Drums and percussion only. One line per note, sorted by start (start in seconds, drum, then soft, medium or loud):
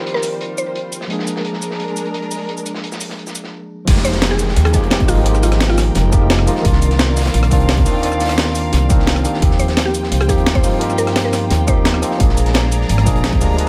0.06 closed hi-hat medium
0.15 snare soft
0.23 closed hi-hat medium
0.23 open hi-hat medium
0.23 cabasa medium
0.41 closed hi-hat medium
0.58 cabasa medium
0.75 closed hi-hat medium
0.92 closed hi-hat medium
0.92 cabasa medium
1.01 snare soft
1.10 closed hi-hat medium
1.19 snare medium
1.27 closed hi-hat medium
1.27 cabasa medium
1.36 snare soft
1.45 closed hi-hat medium
1.53 snare soft
1.62 closed hi-hat medium
1.62 cabasa medium
1.71 snare soft
1.79 closed hi-hat medium
1.88 closed hi-hat soft
1.97 closed hi-hat medium
1.97 cabasa medium
2.05 closed hi-hat soft
2.14 closed hi-hat medium
2.22 closed hi-hat soft
2.31 open hi-hat medium
2.31 cabasa medium
2.49 closed hi-hat medium
2.57 cabasa soft
2.66 closed hi-hat medium
2.66 cabasa medium
2.74 snare medium
2.84 closed hi-hat medium
2.92 snare medium
2.92 cabasa soft
3.01 closed hi-hat medium
3.01 open hi-hat medium
3.01 cabasa medium
3.10 snare soft
3.19 closed hi-hat medium
3.27 snare soft
3.27 cabasa soft
3.35 closed hi-hat medium
3.35 cabasa medium
3.44 snare soft
3.87 kick loud
3.87 closed hi-hat loud
3.87 closed hi-hat medium
3.87 crash loud
3.97 snare soft
4.05 closed hi-hat medium
4.05 cabasa medium
4.13 snare soft
4.13 closed hi-hat soft
4.22 snare loud
4.22 closed hi-hat loud
4.22 closed hi-hat medium
4.31 snare soft
4.39 closed hi-hat medium
4.39 cabasa medium
4.49 snare soft
4.56 closed hi-hat medium
4.65 cross-stick medium
4.65 closed hi-hat soft
4.74 kick medium
4.74 closed hi-hat medium
4.74 cabasa medium
4.83 closed hi-hat soft
4.91 snare loud
4.91 closed hi-hat loud
4.91 closed hi-hat medium
5.00 kick loud
5.00 closed hi-hat soft
5.09 closed hi-hat medium
5.09 open hi-hat medium
5.09 cabasa medium
5.26 closed hi-hat loud
5.26 closed hi-hat medium
5.35 cross-stick soft
5.35 cabasa soft
5.43 closed hi-hat medium
5.43 cabasa medium
5.52 cross-stick soft
5.52 snare medium
5.52 closed hi-hat soft
5.60 snare loud
5.60 closed hi-hat medium
5.69 snare medium
5.78 cross-stick soft
5.78 snare soft
5.78 closed hi-hat medium
5.78 open hi-hat medium
5.78 cabasa medium
5.95 snare soft
5.95 closed hi-hat medium
5.95 closed hi-hat loud
6.13 kick loud
6.13 closed hi-hat medium
6.13 cabasa medium
6.30 snare loud
6.30 closed hi-hat medium
6.39 cross-stick medium
6.48 closed hi-hat medium
6.48 cabasa medium
6.55 snare medium
6.65 kick loud
6.65 closed hi-hat loud
6.65 closed hi-hat medium
6.72 snare medium
6.82 closed hi-hat medium
6.82 cabasa medium
6.91 snare soft
6.91 closed hi-hat soft
6.99 snare loud
6.99 closed hi-hat medium
7.08 snare soft
7.17 snare medium
7.17 closed hi-hat medium
7.17 cabasa medium
7.21 snare medium
7.21 closed hi-hat medium
7.25 snare loud
7.25 closed hi-hat medium
7.34 closed hi-hat medium
7.43 cross-stick medium
7.43 closed hi-hat soft
7.51 kick medium
7.51 closed hi-hat medium
7.51 cabasa medium
7.60 closed hi-hat soft
7.69 snare loud
7.69 closed hi-hat loud
7.69 closed hi-hat medium
7.78 kick loud
7.78 closed hi-hat soft
7.86 closed hi-hat medium
7.86 open hi-hat medium
7.86 cabasa medium
8.03 closed hi-hat medium
8.12 cross-stick soft
8.12 cabasa soft
8.20 snare medium
8.20 closed hi-hat medium
8.20 cabasa medium
8.25 snare medium
8.25 closed hi-hat medium
8.29 cross-stick soft
8.29 snare loud
8.29 closed hi-hat medium
8.29 closed hi-hat soft
8.38 snare loud
8.38 closed hi-hat medium
8.38 closed hi-hat loud
8.47 snare medium
8.55 closed hi-hat medium
8.55 open hi-hat medium
8.55 cabasa medium
8.73 snare soft
8.73 closed hi-hat medium
8.73 closed hi-hat loud
8.90 kick loud
8.90 closed hi-hat medium
8.90 cabasa medium
8.99 snare soft
9.07 snare loud
9.07 closed hi-hat medium
9.16 cross-stick medium
9.16 closed hi-hat soft
9.25 closed hi-hat medium
9.25 cabasa medium
9.34 snare soft
9.42 kick loud
9.42 closed hi-hat medium
9.51 snare soft
9.59 closed hi-hat medium
9.59 cabasa medium
9.68 snare medium
9.68 closed hi-hat soft
9.77 snare loud
9.77 closed hi-hat medium
9.85 snare soft
9.95 closed hi-hat medium
9.95 cabasa medium
10.03 snare soft
10.12 closed hi-hat medium
10.21 cross-stick medium
10.21 closed hi-hat soft
10.29 kick medium
10.29 closed hi-hat medium
10.29 cabasa medium
10.38 closed hi-hat soft
10.46 snare loud
10.46 closed hi-hat medium
10.55 kick loud
10.55 closed hi-hat soft
10.64 closed hi-hat medium
10.64 open hi-hat medium
10.64 cabasa medium
10.81 closed hi-hat medium
10.90 cross-stick soft
10.90 cabasa soft
10.98 closed hi-hat medium
10.98 cabasa medium
11.07 cross-stick soft
11.07 snare medium
11.07 closed hi-hat soft
11.16 snare loud
11.16 closed hi-hat medium
11.16 closed hi-hat loud
11.25 snare medium
11.33 cross-stick soft
11.33 snare soft
11.33 closed hi-hat medium
11.33 open hi-hat medium
11.33 cabasa medium
11.51 snare soft
11.51 closed hi-hat loud
11.68 kick loud
11.68 closed hi-hat medium
11.68 cabasa medium
11.85 snare loud
11.85 closed hi-hat medium
11.94 cross-stick medium
12.02 closed hi-hat medium
12.02 cabasa medium
12.11 snare soft
12.20 kick loud
12.20 closed hi-hat medium
12.20 closed hi-hat loud
12.29 snare soft
12.37 closed hi-hat medium
12.37 cabasa medium
12.46 snare medium
12.46 closed hi-hat soft
12.54 snare loud
12.54 closed hi-hat medium
12.64 snare soft
12.71 closed hi-hat medium
12.71 cabasa medium
12.81 snare soft
12.89 closed hi-hat medium
12.89 closed hi-hat loud
12.98 cross-stick medium
12.98 closed hi-hat soft
13.07 kick medium
13.07 closed hi-hat medium
13.07 cabasa medium
13.15 closed hi-hat soft
13.24 snare loud
13.24 closed hi-hat loud
13.24 closed hi-hat medium
13.33 kick loud
13.33 closed hi-hat soft
13.41 closed hi-hat medium
13.41 open hi-hat medium
13.41 cabasa medium
13.58 closed hi-hat medium
13.58 closed hi-hat loud